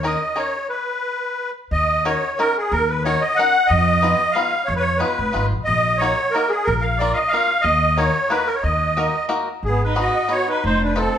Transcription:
Already playing: D#2
0.03 C#4 D#4 G#4 A#4 D#5
0.36 C#4 D#4 G#4 A#4 C#5
0.69 B4
1.71 D#2 D#5
2.05 C#4 D#4 F#4 A#4 C#5
2.39 C#4 D#4 F#4 A#4
2.58 G#4
2.71 D#2 A#4
2.88 B4
3.04 C#4 D#4 F#4 A#4 C#5
3.21 D#5
3.35 C#4 D#4 F#4 A#4 F#5
3.67 F2 D#5
4.02 B3 D#4 F4 G#4
4.32 B3 D#4 F4 F5
4.37 G#4
4.65 F2 C#5
4.76 B4 C#5
4.97 B3 D#4 F4 G#4 B4
5.18 F1
5.32 G#1 B3 D#4 F4 G#4
5.52 A#1
5.64 A#1 D#5
5.98 A#3 D#4 C#5
6.02 F#4 A#4
6.31 A#3 A#4
6.35 D#4 F#4 A#4
6.49 G#4
6.64 A#1 A#4
6.81 F5
6.97 A#3 D4 F4 D5
7.02 A#4
7.13 D#5 F5
7.28 F5
7.33 A#3 D4 F4 A#4
7.61 D#2 D#5
7.96 A#3 D#4 F#4 A#4 C#5
8.29 A#3 D#4 F#4 A#4 B4
8.46 A#4
8.55 C#5
8.63 D#2 D#5
8.97 A#3 D#4 F#4 A#4
9.29 A#3 D#4 F#4 A#4
9.63 G#1 G#4
9.69 B3
9.84 D#4 B4
9.95 B3 D#4 F#4 G#4
10.00 F#4 D#5
10.28 B3 D#4 F#4 G#4 C#5
10.34 F#4
10.49 D#4 B4
10.64 F1 D#4 C5
10.83 D4 B4
10.96 C4 D#4 F4 A4
11.00 C4

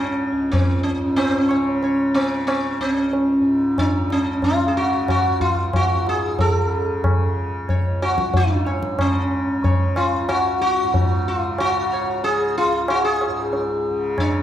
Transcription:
Already playing: C#2 G#2 C#3 C#4
0.32 C#2
0.52 C4, tabla tin, tabla ge
0.83 C#4
0.94 G#2
1.16 C4, tabla na
1.42 C#4
1.50 C#3 C#5, tabla na
1.83 C#5, tabla tin
2.14 C#3 C4, tabla na
2.47 C4, tabla na
2.79 C#2 C4
2.92 C#4
3.13 tabla tin
3.41 G#2
3.78 D4, tabla na, tabla ge
4.01 C#3
4.10 C#4, tabla te
4.42 F4, tabla tin, tabla ge
4.63 C#3
4.68 G#4
4.77 F#4
5.08 F#4, tabla na, tabla ge
5.27 C#2
5.41 F4, tabla ge
5.73 F#4, tabla na, tabla ge
5.89 G#2
6.07 G#4, tabla te
6.39 A4, tabla tin, tabla ge
6.50 C#3
7.04 tabla na, tabla ge
7.10 C#3
7.69 C#5, tabla tin, tabla ge
7.74 C#2
8.02 F#4, tabla na
8.18 tabla ke
8.34 G#2 D4, tabla tin, tabla ge
8.67 C#5, tabla na
8.82 tabla ke
8.98 C#3 C#4, tabla na, tabla ge
9.59 C#3
9.64 C#5, tabla tin, tabla ge
9.96 F4, tabla na
10.20 C#2
10.29 F#4, tabla na
10.62 F#4
10.83 G#2
10.94 tabla tin, tabla ge
11.28 F4
11.42 C#3
11.58 F#4, tabla na
11.93 C#5
12.03 C#3
12.24 G#4, tabla tin
12.58 F4
12.65 C#2
12.88 F#4, tabla na
13.05 G#4
13.21 tabla na
13.28 G#2
13.53 tabla tin
13.91 C#3
14.18 D4 C#5, tabla na, tabla ge

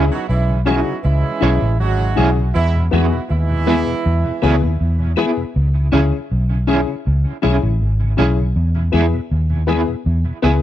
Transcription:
Already playing: E4 G#4
0.10 C#3 F#3 B3 D#4 F#4
0.28 B1 E3 G#3 C#4 E4
0.49 C#3
0.65 E3 F#3 G#3 B3 C#4 D#4 E4 F#4 G#4
0.86 C#3
1.03 C#2 E3 G#3 C#4 E4
1.24 C#3
1.40 B1 E3 G#3 C#4 E4 G#4
1.61 A1 C#3 E4 G#4
1.80 G#1 F#3 G#3 C#4 F#4
1.99 C#3
2.16 B1 E3 G#3 C#4 E4 G#4
2.36 C#3
2.54 E2 E3 G#3 B3 E4
2.74 E2 B2
2.91 E2 E3 F#3 G#3 B3 D#4 E4 F#4 G#4
3.12 E2 B2
3.29 D#2 E3 G#3 B3 E4
3.49 E2 B2
3.67 E3 G#3 B3 E4 G#4
3.86 E2 B2
4.06 E2
4.24 E2 B2
4.42 C#2 C#3 E3 F#3 G#3 A3 B3 C#4 E4 G#4
4.61 D#2 E2 B2 E4 G#4
4.81 E2
4.99 E2 B2
5.16 E3 G#3 B3 E4 G#4
5.37 E2 B2
5.56 C#2
5.74 C#3
5.92 C#2 E3 G#3 C#4 E4 G#4
6.12 C#3
6.32 B1
6.50 C#3
6.67 E3 G#3 C#4 E4 G#4
6.88 C#3
7.07 C#2
7.25 C#3
7.42 B1 E3 G#3 C#4 E4 G#4
7.62 A1 C#3 E4 G#4
7.82 G#1
8.01 C#3
8.17 B1 E3 G#3 C#4 E4 G#4
8.39 C#3
8.56 E2
8.75 E2 B2
8.92 E2 E3 G#3 B3 E4 G#4
9.13 E2 B2
9.31 D#2
9.50 E2 B2
9.67 E3 G#3 B3 E4 G#4
9.88 E2 B2
10.06 E2
10.25 E2 B2
10.42 C#2 E3 G#3 B3 E4 G#4

